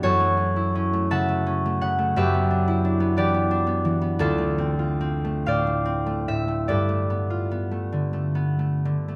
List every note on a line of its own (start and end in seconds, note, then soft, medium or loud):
0.00 2.15 F#2 medium
0.00 0.55 E4 soft
0.00 2.20 F#4 medium
0.00 2.19 C#5 medium
0.00 1.10 E5 medium
0.05 2.20 A4 medium
0.20 0.92 A3 soft
0.37 0.74 C#4 soft
0.56 2.66 E4 soft
0.75 1.45 C#4 soft
0.93 1.27 A3 soft
1.11 1.81 C#3 soft
1.11 2.16 E5 medium
1.11 1.80 F#5 medium
1.11 2.18 A5 medium
1.29 1.64 A3 soft
1.46 2.18 C#4 medium
1.66 1.97 A3 soft
1.81 2.19 C#3 soft
1.81 2.18 F#5 medium
1.99 2.18 A3 soft
2.16 4.23 F#2 medium
2.16 3.17 G4 medium
2.16 3.17 B4 medium
2.16 4.23 E5 medium
2.34 2.99 B3 soft
2.51 2.83 D4 soft
2.68 4.23 E4 soft
2.85 3.50 D4 soft
3.00 3.33 B3 soft
3.17 3.83 E3 soft
3.17 4.23 G4 medium
3.17 4.23 B4 medium
3.17 5.46 D5 medium
3.34 3.65 B3 soft
3.51 4.19 D4 medium
3.67 4.00 B3 soft
3.85 4.23 E3 soft
4.02 4.22 B3 soft
4.19 6.72 D2 medium
4.19 8.11 D4 medium
4.19 4.78 F4 medium
4.19 6.69 A4 medium
4.38 5.23 A3 soft
4.58 4.99 C4 soft
4.79 7.29 F4 soft
5.01 5.84 C4 medium
5.25 5.66 A3 soft
5.46 6.27 A2 soft
5.46 6.73 C5 medium
5.46 6.67 D5 medium
5.46 9.16 F5 medium
5.67 6.05 A3 soft
5.86 6.71 C4 soft
6.06 6.47 A3 soft
6.28 6.72 A2 soft
6.28 6.97 E5 medium
6.48 6.88 A3 soft
6.68 9.16 G2 medium
6.68 9.16 A4 soft
6.68 9.16 B4 soft
6.68 9.16 D5 medium
6.89 7.70 A3 soft
7.10 7.50 B3 soft
7.30 9.16 F4 soft
7.51 8.34 B3 soft
7.71 8.12 A3 soft
7.92 8.84 D3 soft
8.13 8.58 A3 soft
8.35 9.16 B3 soft
8.59 9.07 A3 soft
8.85 9.16 D3 soft
9.08 9.16 A3 soft